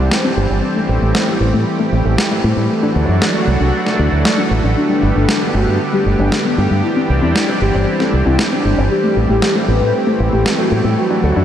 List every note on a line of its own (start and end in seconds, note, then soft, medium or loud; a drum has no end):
0.00 4.73 E3 medium
0.00 2.66 G3 medium
0.00 0.11 C4 loud
0.00 2.66 C4 medium
0.00 0.61 D4 medium
0.00 0.59 G4 medium
0.11 snare loud
0.24 0.35 C4 loud
0.37 0.47 G1 medium
0.37 0.50 G4 medium
0.50 0.60 G1 medium
0.50 0.63 C4 loud
0.63 6.80 A3 medium
0.63 2.68 G4 medium
0.76 0.87 A3 loud
0.89 0.99 A1 medium
0.89 1.01 E4 medium
1.02 1.12 A1 medium
1.02 1.14 A3 loud
1.15 snare loud
1.28 1.38 A3 loud
1.41 1.50 A1 medium
1.41 1.53 E4 medium
1.54 1.63 A2 medium
1.54 1.66 A3 loud
1.80 1.90 A3 loud
1.92 2.02 A1 medium
1.92 2.05 E4 medium
2.05 2.15 A1 medium
2.05 2.18 A3 medium
2.18 snare loud
2.31 2.42 A3 medium
2.44 2.54 A2 medium
2.44 2.56 E4 medium
2.57 2.67 A2 medium
2.57 2.69 A3 loud
2.70 4.75 F#3 medium
2.70 4.75 D4 medium
2.70 4.75 F#4 medium
2.83 2.94 D4 loud
2.96 3.06 D2 medium
2.96 3.08 A4 medium
3.09 3.19 F#2 medium
3.09 3.21 D4 loud
3.22 snare loud
3.35 3.45 D4 loud
3.47 3.57 C2 medium
3.47 3.60 A4 medium
3.61 3.70 C2 medium
3.61 3.73 D4 loud
3.86 3.97 D4 medium
3.86 snare soft
3.99 4.09 D2 medium
3.99 4.12 A4 medium
4.12 4.22 D2 medium
4.12 4.25 D4 medium
4.25 snare loud
4.38 4.49 D4 loud
4.51 4.61 A1 medium
4.51 4.63 A4 medium
4.64 4.74 A1 medium
4.64 4.76 D4 medium
4.77 6.82 D3 medium
4.77 10.94 G3 medium
4.77 6.82 B3 medium
4.77 5.03 D4 loud
4.77 10.94 G4 medium
4.90 5.00 G3 loud
5.03 5.13 G1 medium
5.03 5.15 D4 medium
5.16 5.25 G1 medium
5.16 5.28 G3 loud
5.16 5.41 D4 medium
5.29 snare loud
5.42 5.52 G3 medium
5.54 5.64 G1 medium
5.54 5.67 D4 medium
5.54 5.80 F#4 medium
5.67 5.77 G2 medium
5.67 5.80 G3 medium
5.93 6.04 G3 medium
5.93 6.11 G4 medium
6.06 6.16 G1 medium
6.06 6.18 D4 medium
6.19 6.29 G1 medium
6.19 6.31 G3 medium
6.19 6.36 D4 medium
6.32 snare loud
6.45 6.56 G3 medium
6.45 6.71 B3 medium
6.58 6.68 G2 medium
6.58 6.70 D4 medium
6.71 6.81 G2 medium
6.71 6.83 G3 loud
6.84 8.89 E3 medium
6.84 10.94 C4 medium
6.84 8.89 D4 medium
6.84 7.09 E4 loud
6.97 7.07 C4 loud
7.10 7.20 C2 medium
7.10 7.22 G4 medium
7.22 7.32 E2 medium
7.22 7.35 C4 medium
7.22 7.48 E4 loud
7.36 snare loud
7.48 7.59 C4 loud
7.61 7.71 G1 medium
7.61 7.74 G4 medium
7.61 7.87 G4 loud
7.74 7.84 G1 medium
7.74 7.87 C4 loud
8.00 8.11 C4 loud
8.00 8.17 A4 medium
8.00 snare soft
8.13 8.23 C2 medium
8.13 8.26 G4 medium
8.26 8.36 C2 medium
8.26 8.38 C4 medium
8.26 8.43 E4 medium
8.39 snare loud
8.52 8.63 C4 loud
8.52 8.78 D4 medium
8.65 8.75 G1 medium
8.65 8.77 G4 medium
8.78 8.88 G1 medium
8.78 8.90 C4 loud
8.91 11.45 E3 medium
8.91 11.45 A3 medium
8.91 9.16 G4 loud
9.04 9.14 A3 loud
9.17 9.26 A1 medium
9.17 9.29 E4 medium
9.29 9.39 A1 medium
9.29 9.42 A3 loud
9.29 9.55 G4 loud
9.42 snare loud
9.55 9.66 A3 loud
9.68 9.78 A1 medium
9.68 9.81 E4 medium
9.68 9.94 B4 loud
9.81 9.91 A2 medium
9.81 9.94 A3 loud
10.07 10.18 A3 loud
10.07 10.24 C5 medium
10.20 10.30 A1 medium
10.20 10.32 E4 medium
10.33 10.43 A1 medium
10.33 10.45 A3 loud
10.33 10.50 G4 medium
10.46 snare loud
10.59 10.69 A3 loud
10.59 10.84 F#4 loud
10.72 10.82 A2 medium
10.72 10.84 E4 medium
10.85 10.94 A2 medium
10.85 10.97 A3 loud
10.98 11.45 F#3 medium
10.98 11.45 D4 medium
10.98 11.45 F#4 medium
10.98 11.23 F#4 loud
11.11 11.21 D4 loud
11.23 11.33 D2 medium
11.23 11.36 A4 medium
11.36 11.45 F#2 medium
11.36 11.45 D4 loud
11.36 11.45 F#4 loud